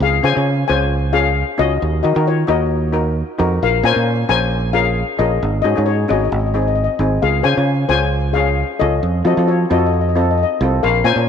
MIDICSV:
0, 0, Header, 1, 4, 480
1, 0, Start_track
1, 0, Key_signature, -5, "major"
1, 0, Tempo, 450789
1, 14, Time_signature, 4, 2, 24, 8
1, 12021, End_track
2, 0, Start_track
2, 0, Title_t, "Steel pan"
2, 0, Program_c, 0, 114
2, 26, Note_on_c, 0, 77, 93
2, 35, Note_on_c, 0, 68, 77
2, 249, Note_off_c, 0, 68, 0
2, 258, Note_on_c, 0, 72, 81
2, 260, Note_on_c, 0, 80, 100
2, 267, Note_off_c, 0, 77, 0
2, 704, Note_off_c, 0, 72, 0
2, 705, Note_off_c, 0, 80, 0
2, 721, Note_on_c, 0, 80, 104
2, 738, Note_on_c, 0, 72, 82
2, 1184, Note_off_c, 0, 72, 0
2, 1202, Note_on_c, 0, 77, 95
2, 1208, Note_on_c, 0, 68, 69
2, 1224, Note_off_c, 0, 80, 0
2, 1659, Note_off_c, 0, 68, 0
2, 1695, Note_on_c, 0, 75, 100
2, 1701, Note_on_c, 0, 66, 74
2, 1704, Note_off_c, 0, 77, 0
2, 2146, Note_off_c, 0, 66, 0
2, 2148, Note_off_c, 0, 75, 0
2, 2159, Note_on_c, 0, 66, 63
2, 2161, Note_on_c, 0, 75, 86
2, 2271, Note_off_c, 0, 66, 0
2, 2273, Note_off_c, 0, 75, 0
2, 2422, Note_on_c, 0, 73, 85
2, 2425, Note_on_c, 0, 65, 60
2, 2645, Note_off_c, 0, 65, 0
2, 2653, Note_on_c, 0, 66, 67
2, 2661, Note_on_c, 0, 75, 86
2, 2667, Note_off_c, 0, 73, 0
2, 3572, Note_off_c, 0, 66, 0
2, 3576, Note_off_c, 0, 75, 0
2, 3865, Note_on_c, 0, 77, 97
2, 3875, Note_on_c, 0, 70, 80
2, 3971, Note_off_c, 0, 77, 0
2, 3979, Note_off_c, 0, 70, 0
2, 4101, Note_on_c, 0, 80, 112
2, 4114, Note_on_c, 0, 72, 89
2, 4545, Note_off_c, 0, 80, 0
2, 4552, Note_off_c, 0, 72, 0
2, 4572, Note_on_c, 0, 80, 115
2, 4589, Note_on_c, 0, 72, 86
2, 5029, Note_off_c, 0, 72, 0
2, 5039, Note_on_c, 0, 77, 98
2, 5049, Note_on_c, 0, 68, 77
2, 5068, Note_off_c, 0, 80, 0
2, 5498, Note_off_c, 0, 68, 0
2, 5523, Note_on_c, 0, 75, 91
2, 5542, Note_off_c, 0, 77, 0
2, 5550, Note_on_c, 0, 68, 74
2, 5970, Note_off_c, 0, 75, 0
2, 5983, Note_on_c, 0, 75, 90
2, 5990, Note_off_c, 0, 68, 0
2, 6006, Note_on_c, 0, 66, 64
2, 6098, Note_off_c, 0, 75, 0
2, 6116, Note_off_c, 0, 66, 0
2, 6238, Note_on_c, 0, 73, 81
2, 6259, Note_on_c, 0, 68, 63
2, 6481, Note_off_c, 0, 68, 0
2, 6494, Note_off_c, 0, 73, 0
2, 6497, Note_on_c, 0, 75, 79
2, 6523, Note_on_c, 0, 66, 67
2, 6574, Note_off_c, 0, 75, 0
2, 6588, Note_off_c, 0, 66, 0
2, 6588, Note_on_c, 0, 75, 56
2, 6638, Note_off_c, 0, 75, 0
2, 6651, Note_on_c, 0, 75, 61
2, 6693, Note_off_c, 0, 75, 0
2, 6706, Note_on_c, 0, 75, 49
2, 6796, Note_off_c, 0, 75, 0
2, 6808, Note_on_c, 0, 75, 50
2, 6871, Note_off_c, 0, 75, 0
2, 6883, Note_on_c, 0, 75, 48
2, 6955, Note_off_c, 0, 75, 0
2, 6968, Note_on_c, 0, 75, 57
2, 7034, Note_off_c, 0, 75, 0
2, 7047, Note_on_c, 0, 75, 47
2, 7095, Note_off_c, 0, 75, 0
2, 7108, Note_on_c, 0, 75, 60
2, 7177, Note_off_c, 0, 75, 0
2, 7190, Note_on_c, 0, 75, 55
2, 7271, Note_off_c, 0, 75, 0
2, 7284, Note_on_c, 0, 75, 67
2, 7362, Note_off_c, 0, 75, 0
2, 7691, Note_on_c, 0, 77, 95
2, 7700, Note_on_c, 0, 68, 75
2, 7914, Note_on_c, 0, 72, 84
2, 7921, Note_off_c, 0, 68, 0
2, 7923, Note_on_c, 0, 80, 105
2, 7940, Note_off_c, 0, 77, 0
2, 8370, Note_off_c, 0, 72, 0
2, 8394, Note_off_c, 0, 80, 0
2, 8398, Note_on_c, 0, 72, 85
2, 8407, Note_on_c, 0, 80, 106
2, 8853, Note_off_c, 0, 72, 0
2, 8870, Note_on_c, 0, 68, 74
2, 8877, Note_on_c, 0, 77, 93
2, 8906, Note_off_c, 0, 80, 0
2, 9328, Note_off_c, 0, 68, 0
2, 9365, Note_on_c, 0, 69, 71
2, 9365, Note_on_c, 0, 75, 97
2, 9381, Note_off_c, 0, 77, 0
2, 9816, Note_off_c, 0, 69, 0
2, 9854, Note_on_c, 0, 66, 70
2, 9857, Note_off_c, 0, 75, 0
2, 9870, Note_on_c, 0, 75, 91
2, 10078, Note_off_c, 0, 66, 0
2, 10089, Note_on_c, 0, 65, 66
2, 10093, Note_on_c, 0, 73, 81
2, 10110, Note_off_c, 0, 75, 0
2, 10199, Note_off_c, 0, 65, 0
2, 10202, Note_off_c, 0, 73, 0
2, 10350, Note_on_c, 0, 75, 84
2, 10351, Note_on_c, 0, 66, 64
2, 10409, Note_off_c, 0, 75, 0
2, 10422, Note_off_c, 0, 66, 0
2, 10422, Note_on_c, 0, 75, 59
2, 10489, Note_off_c, 0, 75, 0
2, 10502, Note_on_c, 0, 75, 65
2, 10559, Note_off_c, 0, 75, 0
2, 10572, Note_on_c, 0, 75, 54
2, 10647, Note_off_c, 0, 75, 0
2, 10660, Note_on_c, 0, 75, 56
2, 10730, Note_off_c, 0, 75, 0
2, 10743, Note_on_c, 0, 75, 54
2, 10809, Note_off_c, 0, 75, 0
2, 10823, Note_on_c, 0, 75, 59
2, 10874, Note_off_c, 0, 75, 0
2, 10887, Note_on_c, 0, 75, 50
2, 10965, Note_off_c, 0, 75, 0
2, 10976, Note_on_c, 0, 75, 61
2, 11037, Note_off_c, 0, 75, 0
2, 11050, Note_on_c, 0, 75, 55
2, 11092, Note_off_c, 0, 75, 0
2, 11105, Note_on_c, 0, 75, 71
2, 11192, Note_off_c, 0, 75, 0
2, 11530, Note_on_c, 0, 70, 73
2, 11533, Note_on_c, 0, 77, 100
2, 11756, Note_off_c, 0, 70, 0
2, 11765, Note_on_c, 0, 80, 115
2, 11767, Note_on_c, 0, 72, 86
2, 11782, Note_off_c, 0, 77, 0
2, 12021, Note_off_c, 0, 72, 0
2, 12021, Note_off_c, 0, 80, 0
2, 12021, End_track
3, 0, Start_track
3, 0, Title_t, "Steel pan"
3, 0, Program_c, 1, 114
3, 244, Note_on_c, 1, 61, 73
3, 254, Note_on_c, 1, 65, 67
3, 262, Note_on_c, 1, 68, 77
3, 326, Note_off_c, 1, 61, 0
3, 331, Note_off_c, 1, 65, 0
3, 335, Note_off_c, 1, 68, 0
3, 373, Note_on_c, 1, 61, 66
3, 387, Note_on_c, 1, 65, 60
3, 391, Note_on_c, 1, 68, 77
3, 593, Note_off_c, 1, 61, 0
3, 600, Note_off_c, 1, 65, 0
3, 602, Note_off_c, 1, 68, 0
3, 735, Note_on_c, 1, 61, 76
3, 739, Note_on_c, 1, 65, 69
3, 743, Note_on_c, 1, 68, 80
3, 1026, Note_off_c, 1, 61, 0
3, 1028, Note_off_c, 1, 65, 0
3, 1031, Note_off_c, 1, 68, 0
3, 1206, Note_on_c, 1, 61, 72
3, 1207, Note_on_c, 1, 65, 67
3, 1214, Note_on_c, 1, 68, 83
3, 1502, Note_off_c, 1, 61, 0
3, 1503, Note_off_c, 1, 65, 0
3, 1506, Note_off_c, 1, 68, 0
3, 1679, Note_on_c, 1, 61, 76
3, 1685, Note_on_c, 1, 65, 65
3, 1694, Note_on_c, 1, 68, 78
3, 1928, Note_off_c, 1, 61, 0
3, 1931, Note_off_c, 1, 65, 0
3, 1936, Note_off_c, 1, 68, 0
3, 2168, Note_on_c, 1, 63, 70
3, 2169, Note_on_c, 1, 66, 65
3, 2178, Note_on_c, 1, 70, 78
3, 2248, Note_off_c, 1, 63, 0
3, 2249, Note_off_c, 1, 66, 0
3, 2253, Note_off_c, 1, 70, 0
3, 2288, Note_on_c, 1, 63, 67
3, 2295, Note_on_c, 1, 66, 64
3, 2301, Note_on_c, 1, 70, 81
3, 2510, Note_off_c, 1, 63, 0
3, 2514, Note_off_c, 1, 66, 0
3, 2517, Note_off_c, 1, 70, 0
3, 2633, Note_on_c, 1, 63, 82
3, 2639, Note_on_c, 1, 66, 74
3, 2648, Note_on_c, 1, 70, 90
3, 2935, Note_off_c, 1, 63, 0
3, 2939, Note_off_c, 1, 66, 0
3, 2943, Note_off_c, 1, 70, 0
3, 3114, Note_on_c, 1, 63, 78
3, 3121, Note_on_c, 1, 66, 63
3, 3126, Note_on_c, 1, 70, 83
3, 3416, Note_off_c, 1, 63, 0
3, 3419, Note_off_c, 1, 66, 0
3, 3422, Note_off_c, 1, 70, 0
3, 3606, Note_on_c, 1, 63, 85
3, 3611, Note_on_c, 1, 66, 82
3, 3612, Note_on_c, 1, 70, 92
3, 3851, Note_off_c, 1, 63, 0
3, 3854, Note_off_c, 1, 66, 0
3, 3855, Note_off_c, 1, 70, 0
3, 4084, Note_on_c, 1, 61, 79
3, 4085, Note_on_c, 1, 65, 66
3, 4093, Note_on_c, 1, 70, 79
3, 4166, Note_off_c, 1, 61, 0
3, 4167, Note_off_c, 1, 65, 0
3, 4171, Note_off_c, 1, 70, 0
3, 4211, Note_on_c, 1, 61, 71
3, 4217, Note_on_c, 1, 65, 65
3, 4223, Note_on_c, 1, 70, 79
3, 4432, Note_off_c, 1, 61, 0
3, 4435, Note_off_c, 1, 65, 0
3, 4438, Note_off_c, 1, 70, 0
3, 4565, Note_on_c, 1, 61, 78
3, 4571, Note_on_c, 1, 70, 90
3, 4575, Note_on_c, 1, 65, 73
3, 4861, Note_off_c, 1, 61, 0
3, 4864, Note_off_c, 1, 70, 0
3, 4866, Note_off_c, 1, 65, 0
3, 5043, Note_on_c, 1, 61, 68
3, 5052, Note_on_c, 1, 65, 67
3, 5055, Note_on_c, 1, 70, 84
3, 5340, Note_off_c, 1, 61, 0
3, 5345, Note_off_c, 1, 65, 0
3, 5346, Note_off_c, 1, 70, 0
3, 5522, Note_on_c, 1, 61, 73
3, 5530, Note_on_c, 1, 65, 63
3, 5535, Note_on_c, 1, 70, 79
3, 5769, Note_off_c, 1, 61, 0
3, 5773, Note_off_c, 1, 65, 0
3, 5776, Note_off_c, 1, 70, 0
3, 6009, Note_on_c, 1, 63, 69
3, 6010, Note_on_c, 1, 61, 71
3, 6016, Note_on_c, 1, 68, 75
3, 6089, Note_off_c, 1, 61, 0
3, 6089, Note_off_c, 1, 63, 0
3, 6092, Note_off_c, 1, 68, 0
3, 6130, Note_on_c, 1, 61, 69
3, 6138, Note_on_c, 1, 63, 63
3, 6146, Note_on_c, 1, 68, 74
3, 6351, Note_off_c, 1, 61, 0
3, 6355, Note_off_c, 1, 63, 0
3, 6359, Note_off_c, 1, 68, 0
3, 6477, Note_on_c, 1, 61, 75
3, 6483, Note_on_c, 1, 63, 68
3, 6486, Note_on_c, 1, 68, 89
3, 6726, Note_off_c, 1, 61, 0
3, 6729, Note_off_c, 1, 63, 0
3, 6731, Note_off_c, 1, 68, 0
3, 6963, Note_on_c, 1, 60, 70
3, 6968, Note_on_c, 1, 63, 66
3, 6975, Note_on_c, 1, 68, 76
3, 7260, Note_off_c, 1, 60, 0
3, 7262, Note_off_c, 1, 63, 0
3, 7266, Note_off_c, 1, 68, 0
3, 7448, Note_on_c, 1, 60, 71
3, 7448, Note_on_c, 1, 63, 62
3, 7457, Note_on_c, 1, 68, 73
3, 7692, Note_off_c, 1, 60, 0
3, 7692, Note_off_c, 1, 63, 0
3, 7696, Note_off_c, 1, 68, 0
3, 7918, Note_on_c, 1, 61, 68
3, 7921, Note_on_c, 1, 65, 67
3, 7931, Note_on_c, 1, 68, 83
3, 8003, Note_off_c, 1, 61, 0
3, 8004, Note_off_c, 1, 65, 0
3, 8009, Note_off_c, 1, 68, 0
3, 8054, Note_on_c, 1, 61, 70
3, 8066, Note_on_c, 1, 65, 65
3, 8068, Note_on_c, 1, 68, 74
3, 8273, Note_off_c, 1, 61, 0
3, 8279, Note_off_c, 1, 65, 0
3, 8280, Note_off_c, 1, 68, 0
3, 8414, Note_on_c, 1, 61, 72
3, 8422, Note_on_c, 1, 65, 70
3, 8424, Note_on_c, 1, 68, 88
3, 8705, Note_off_c, 1, 61, 0
3, 8709, Note_off_c, 1, 65, 0
3, 8710, Note_off_c, 1, 68, 0
3, 8894, Note_on_c, 1, 61, 73
3, 8902, Note_on_c, 1, 65, 68
3, 8910, Note_on_c, 1, 68, 79
3, 9185, Note_off_c, 1, 61, 0
3, 9189, Note_off_c, 1, 65, 0
3, 9194, Note_off_c, 1, 68, 0
3, 9378, Note_on_c, 1, 61, 70
3, 9382, Note_on_c, 1, 65, 66
3, 9387, Note_on_c, 1, 68, 77
3, 9617, Note_off_c, 1, 61, 0
3, 9619, Note_off_c, 1, 65, 0
3, 9622, Note_off_c, 1, 68, 0
3, 9845, Note_on_c, 1, 60, 73
3, 9849, Note_on_c, 1, 65, 66
3, 9851, Note_on_c, 1, 69, 79
3, 9926, Note_off_c, 1, 60, 0
3, 9929, Note_off_c, 1, 65, 0
3, 9929, Note_off_c, 1, 69, 0
3, 9986, Note_on_c, 1, 60, 72
3, 9987, Note_on_c, 1, 65, 61
3, 9997, Note_on_c, 1, 69, 77
3, 10199, Note_off_c, 1, 60, 0
3, 10199, Note_off_c, 1, 65, 0
3, 10204, Note_off_c, 1, 69, 0
3, 10330, Note_on_c, 1, 60, 76
3, 10338, Note_on_c, 1, 65, 75
3, 10341, Note_on_c, 1, 69, 89
3, 10624, Note_off_c, 1, 60, 0
3, 10628, Note_off_c, 1, 65, 0
3, 10629, Note_off_c, 1, 69, 0
3, 10811, Note_on_c, 1, 60, 74
3, 10815, Note_on_c, 1, 65, 64
3, 10825, Note_on_c, 1, 69, 85
3, 11104, Note_off_c, 1, 60, 0
3, 11106, Note_off_c, 1, 65, 0
3, 11111, Note_off_c, 1, 69, 0
3, 11299, Note_on_c, 1, 60, 77
3, 11303, Note_on_c, 1, 65, 69
3, 11311, Note_on_c, 1, 69, 79
3, 11538, Note_off_c, 1, 60, 0
3, 11539, Note_off_c, 1, 65, 0
3, 11544, Note_off_c, 1, 69, 0
3, 11765, Note_on_c, 1, 61, 76
3, 11776, Note_on_c, 1, 65, 65
3, 11779, Note_on_c, 1, 70, 83
3, 11847, Note_off_c, 1, 61, 0
3, 11852, Note_off_c, 1, 65, 0
3, 11854, Note_off_c, 1, 70, 0
3, 11887, Note_on_c, 1, 61, 73
3, 11896, Note_on_c, 1, 70, 74
3, 11897, Note_on_c, 1, 65, 64
3, 12021, Note_off_c, 1, 61, 0
3, 12021, Note_off_c, 1, 65, 0
3, 12021, Note_off_c, 1, 70, 0
3, 12021, End_track
4, 0, Start_track
4, 0, Title_t, "Fingered electric bass"
4, 0, Program_c, 2, 33
4, 3, Note_on_c, 2, 37, 91
4, 202, Note_off_c, 2, 37, 0
4, 251, Note_on_c, 2, 49, 92
4, 355, Note_off_c, 2, 49, 0
4, 388, Note_on_c, 2, 49, 92
4, 671, Note_off_c, 2, 49, 0
4, 739, Note_on_c, 2, 37, 92
4, 1513, Note_off_c, 2, 37, 0
4, 1695, Note_on_c, 2, 37, 91
4, 1889, Note_off_c, 2, 37, 0
4, 1940, Note_on_c, 2, 39, 91
4, 2132, Note_off_c, 2, 39, 0
4, 2177, Note_on_c, 2, 51, 94
4, 2279, Note_off_c, 2, 51, 0
4, 2300, Note_on_c, 2, 51, 96
4, 2587, Note_off_c, 2, 51, 0
4, 2644, Note_on_c, 2, 39, 90
4, 3424, Note_off_c, 2, 39, 0
4, 3616, Note_on_c, 2, 41, 90
4, 3810, Note_off_c, 2, 41, 0
4, 3860, Note_on_c, 2, 34, 94
4, 4052, Note_off_c, 2, 34, 0
4, 4083, Note_on_c, 2, 46, 95
4, 4190, Note_off_c, 2, 46, 0
4, 4217, Note_on_c, 2, 46, 90
4, 4505, Note_off_c, 2, 46, 0
4, 4568, Note_on_c, 2, 34, 88
4, 5346, Note_off_c, 2, 34, 0
4, 5527, Note_on_c, 2, 34, 89
4, 5724, Note_off_c, 2, 34, 0
4, 5777, Note_on_c, 2, 32, 96
4, 5970, Note_off_c, 2, 32, 0
4, 6016, Note_on_c, 2, 44, 92
4, 6118, Note_off_c, 2, 44, 0
4, 6153, Note_on_c, 2, 44, 90
4, 6434, Note_off_c, 2, 44, 0
4, 6499, Note_on_c, 2, 32, 88
4, 6691, Note_off_c, 2, 32, 0
4, 6729, Note_on_c, 2, 32, 104
4, 7313, Note_off_c, 2, 32, 0
4, 7443, Note_on_c, 2, 32, 84
4, 7642, Note_off_c, 2, 32, 0
4, 7693, Note_on_c, 2, 37, 90
4, 7888, Note_off_c, 2, 37, 0
4, 7933, Note_on_c, 2, 49, 90
4, 8036, Note_off_c, 2, 49, 0
4, 8064, Note_on_c, 2, 49, 90
4, 8348, Note_off_c, 2, 49, 0
4, 8399, Note_on_c, 2, 37, 89
4, 9180, Note_off_c, 2, 37, 0
4, 9383, Note_on_c, 2, 37, 96
4, 9574, Note_off_c, 2, 37, 0
4, 9613, Note_on_c, 2, 41, 96
4, 9808, Note_off_c, 2, 41, 0
4, 9847, Note_on_c, 2, 53, 92
4, 9953, Note_off_c, 2, 53, 0
4, 9979, Note_on_c, 2, 53, 92
4, 10265, Note_off_c, 2, 53, 0
4, 10335, Note_on_c, 2, 41, 97
4, 11110, Note_off_c, 2, 41, 0
4, 11293, Note_on_c, 2, 36, 93
4, 11488, Note_off_c, 2, 36, 0
4, 11541, Note_on_c, 2, 34, 97
4, 11733, Note_off_c, 2, 34, 0
4, 11759, Note_on_c, 2, 46, 99
4, 11868, Note_off_c, 2, 46, 0
4, 11880, Note_on_c, 2, 46, 94
4, 12021, Note_off_c, 2, 46, 0
4, 12021, End_track
0, 0, End_of_file